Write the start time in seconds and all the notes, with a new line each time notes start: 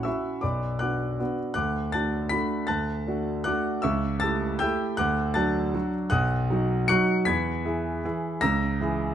0.03 C#4 E4 F#4 E5 C#6 E6
0.41 B1 D5 B5 D6
0.79 B3 D4 F#4 F#5 D6 F#6
1.19 B3 D4 F#4
1.54 D2 F#5 D6 F#6
1.92 A3 D4 F#4 A5 F#6 A6
2.29 A3 D4 F#4 B5 B6
2.67 D2 A5 F#6 A6
3.07 A3 D4 F#4
3.44 A3 D4 F#4 F#5 D6 F#6
3.82 C#2 E5 C#6 E6
4.20 A3 E4 G4 A5 E6 A6
4.59 A3 E4 G4 G5 E6 G6
4.97 D2 F#5 D6 F#6
5.34 F#3 D4 F#4 A5 F#6 A6
5.74 F#3 D4 F#4
6.10 B1 F#5 D#6 F#6
6.50 F#3 D#4 F#4
6.88 F#3 D#4 F#4 C#6 F#6 C#7
7.25 E2 B5 G#6 B6
7.65 E3 E4 G#4
8.05 E3 E4 G#4
8.41 C#2 A#5 E6 A#6
8.80 E3 E4 G#4